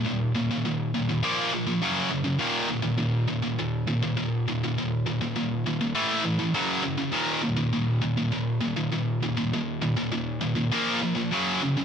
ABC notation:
X:1
M:4/4
L:1/16
Q:1/4=101
K:Ebm
V:1 name="Distorted electric guitar" clef=bass
[E,,B,,]2 [E,,B,,] [E,,B,,] [E,,B,,]2 [E,,B,,] [E,,B,,] [B,,F,B,]2 [B,,F,] [B,,F,] [G,,D,G,]2 [G,,D,] [G,,D,] | [E,,B,,E,]2 [E,,B,,] [E,,B,,] [E,,B,,]2 [E,,B,,] [E,,B,,] [E,,B,,]2 [E,,B,,] [E,,B,,] [E,,B,,]2 [E,,B,,] [E,,B,,] | [E,,B,,]2 [E,,B,,] [E,,B,,] [E,,B,,]2 [E,,B,,] [E,,B,,] [=A,,=E,=A,]2 [A,,E,] [A,,E,] [G,,D,G,]2 [G,,D,] [G,,D,] | [E,,B,,E,]2 [E,,B,,] [E,,B,,] [E,,B,,]2 [E,,B,,] [E,,B,,] [E,,B,,]2 [E,,B,,] [E,,B,,] [E,,B,,]2 [E,,B,,] [E,,B,,] |
[E,,B,,]2 [E,,B,,] [E,,B,,] [E,,B,,]2 [E,,B,,] [E,,B,,] [B,,F,B,]2 [B,,F,] [B,,F,] [G,,D,G,]2 [G,,D,] [G,,D,] |]